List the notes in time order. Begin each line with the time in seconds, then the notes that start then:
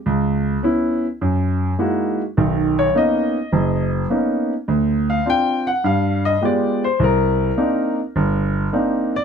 0.06 C#2
0.63 B3 C#4 E4
1.21 F#2
1.79 G#3 A#3 D#4 E4 F#4
2.37 B1 D#3
2.79 C#5
2.94 A#3 B3 C#4 D#4 D#5
3.52 F#1
4.10 A#3 B3 C#4 D#4
4.68 D2
5.10 F5
5.26 C4 D4 F4 G5
5.67 F#5
5.84 G2 F5
6.25 D#5
6.42 G#3 B3 F4 G4 D5
6.84 C5
6.99 C2
7.04 A#4
7.57 A#3 C4 D4 D#4
8.16 G1
8.73 A#3 C4 D4 D#4
9.16 D5